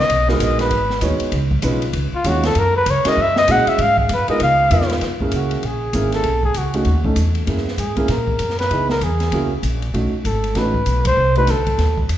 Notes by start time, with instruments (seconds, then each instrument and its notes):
0.00 flugelhorn D#5
0.09 upright bass B1, kick, ride
0.28 grand piano G#3 B3 D#4 F#4 A#4, flugelhorn B4, snare
0.40 upright bass A#1, flugelhorn D#5, kick, hi-hat pedal, ride
0.59 flugelhorn B4, snare, ride
0.71 upright bass G#1, kick, ride
0.90 snare
1.01 upright bass D#2, grand piano G#3 B3 D#4 F#4 C#5, kick, hi-hat pedal, ride
1.20 muted upright bass stroke, ride
1.32 upright bass C#2, kick, ride
1.51 kick
1.62 upright bass B1, grand piano G#3 C#4 D#4 F4 B4, kick, hi-hat pedal, ride
1.82 ride
1.93 upright bass C#2, kick, ride
2.13 flugelhorn F4, muted upright bass stroke
2.24 upright bass D#2, grand piano G#3 C#4 D#4 F4 C#5, flugelhorn F#4, kick, hi-hat pedal, ride
2.43 flugelhorn A4, snare, ride
2.55 upright bass F#2, flugelhorn A#4, kick, ride
2.76 flugelhorn B4
2.86 upright bass C#2, kick, hi-hat pedal, ride
2.91 flugelhorn C#5
3.05 grand piano G#3 C#4 E4 F#4 A#4, flugelhorn D#5, muted upright bass stroke, snare, ride
3.17 upright bass F#2, kick
3.22 flugelhorn E5
3.36 flugelhorn D#5, snare
3.48 upright bass A#2, grand piano G#3 C#4 E4 F#4 G#4, flugelhorn F#5, kick, hi-hat pedal, ride
3.67 flugelhorn E5, muted upright bass stroke, ride
3.78 upright bass G#2, flugelhorn F5, kick, ride
3.98 flugelhorn G#4, kick
4.09 upright bass F#2, flugelhorn B4, kick, hi-hat pedal, ride
4.28 grand piano G#3 B3 D#4 F4 A#4, flugelhorn D#5, muted upright bass stroke, ride
4.40 upright bass C#2, flugelhorn F5, kick, ride
4.71 upright bass F2, grand piano G#3 B3 D#4 F4 A#4, kick, hi-hat pedal, ride
4.81 snare
4.90 snare, ride
5.01 upright bass F#2, kick, snare, ride
5.20 grand piano A#3 C#4 E4 G#4, kick
5.31 upright bass C#2, flugelhorn F#4, kick, hi-hat pedal, ride
5.51 ride
5.63 upright bass A#1, flugelhorn G#4, kick, ride
5.93 upright bass G#1, grand piano A#3 C#4 E4 G#4, kick, hi-hat pedal, ride
6.12 flugelhorn A4, snare, ride
6.23 upright bass B1, kick, ride
6.43 flugelhorn G#4, kick
6.54 upright bass C#2, flugelhorn F#4, kick, hi-hat pedal, ride
6.74 grand piano A3 C#4 D#4 F#4, ride
6.85 upright bass D#2, kick, ride
7.04 grand piano A3 C#4 D#4 A4, kick
7.16 upright bass E2, kick, hi-hat pedal, ride
7.35 ride
7.47 upright bass F#2, grand piano A#3 C#4 E4 G#4, kick, ride
7.57 snare
7.68 snare
7.78 upright bass G#2, flugelhorn G#4, kick, hi-hat pedal, ride
7.96 grand piano A#3 C#4 E4 G#4, kick, ride
8.08 upright bass A#2, flugelhorn A#4, kick, snare, ride
8.28 kick
8.39 upright bass F#2, kick, hi-hat pedal, ride
8.50 snare
8.59 flugelhorn B4, snare, ride
8.70 upright bass C#2, grand piano B3 D#4 E4 G#4, kick, ride
8.89 flugelhorn A#4, snare
9.01 upright bass E2, flugelhorn G#4, kick, hi-hat pedal, ride
9.20 snare, ride
9.32 upright bass C#2, grand piano A#3 C#4 E4 F#4, kick, ride
9.63 upright bass A#1, kick, hi-hat pedal, ride
9.82 ride
9.94 upright bass B1, grand piano A3 C#4 D#4 F#4, kick, ride
10.24 upright bass G#1, flugelhorn A4, kick, hi-hat pedal, ride
10.44 ride
10.55 upright bass A1, grand piano A3 C#4 D#4 F#4, flugelhorn B4, kick, snare, ride
10.74 kick
10.86 upright bass B1, kick, hi-hat pedal, ride
11.05 flugelhorn C5, kick, ride
11.17 upright bass C2
11.35 grand piano A3 D4 D#4 F#4, flugelhorn B4, ride
11.47 upright bass D2, flugelhorn A4, kick, snare, hi-hat pedal, ride
11.66 kick, ride
11.78 upright bass D#2, kick, snare, ride
11.97 kick
12.09 upright bass F2, kick, hi-hat pedal, ride